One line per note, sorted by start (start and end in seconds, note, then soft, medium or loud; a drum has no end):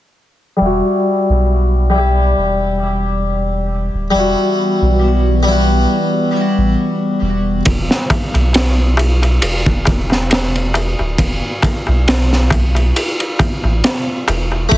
0.57 0.82 E1 medium
0.57 1.86 G3 medium
0.61 1.88 E4 medium
0.65 1.90 F#4 medium
1.29 2.33 B1 loud
1.90 4.07 G3 medium
1.90 4.09 E4 medium
1.98 4.11 G4 medium
2.37 3.89 E1 medium
3.93 4.11 D1 medium
4.11 4.35 E1 medium
4.11 7.63 E3 medium
4.11 5.39 G3 medium
4.11 7.63 G3 medium
4.11 7.63 B3 medium
4.11 5.41 E4 medium
4.11 5.88 F#4 medium
4.18 5.43 F#4 medium
4.81 5.86 B1 loud
5.43 7.60 G3 medium
5.47 7.62 E4 medium
5.47 7.64 F#4 medium
6.57 6.75 A1 medium
7.21 7.61 E1 loud
7.65 7.88 E1 medium
7.65 kick loud
7.65 ride medium
7.65 darbuka tek soft
7.91 snare soft
8.10 kick loud
8.10 ride medium
8.10 darbuka tek medium
8.34 9.39 B1 loud
8.34 ride soft
8.34 darbuka tek soft
8.53 snare loud
8.53 ride medium
8.53 darbuka tek soft
8.97 ride medium
8.97 darbuka tek medium
9.22 ride soft
9.22 darbuka tek soft
9.42 10.94 E1 medium
9.42 ride medium
9.42 darbuka tek soft
9.66 kick medium
9.85 kick medium
9.85 ride medium
9.85 darbuka tek medium
10.10 snare soft
10.10 darbuka tek soft
10.30 snare loud
10.30 ride medium
10.30 darbuka tek soft
10.55 ride soft
10.74 ride medium
10.74 darbuka tek medium
10.99 11.17 D1 medium
10.99 darbuka tek soft
11.18 11.40 E1 medium
11.18 kick loud
11.18 ride medium
11.18 darbuka tek soft
11.62 kick medium
11.62 ride medium
11.62 darbuka tek medium
11.87 12.92 B1 loud
11.87 darbuka tek medium
12.08 snare loud
12.08 ride medium
12.08 darbuka tek soft
12.33 snare soft
12.50 kick medium
12.50 ride medium
12.50 darbuka tek medium
12.75 ride soft
12.75 darbuka tek soft
12.96 ride medium
12.96 darbuka tek soft
13.20 ride soft
13.39 kick medium
13.39 ride medium
13.39 darbuka tek medium
13.64 13.81 A1 medium
13.64 darbuka tek soft
13.84 snare medium
13.84 ride medium
13.84 darbuka tek soft
14.28 14.67 E1 loud
14.28 ride medium
14.28 darbuka tek medium
14.52 darbuka tek medium
14.69 14.78 F#1 medium
14.69 14.78 A3 medium
14.69 kick medium
14.69 ride medium
14.69 darbuka tek soft
14.73 14.78 E4 medium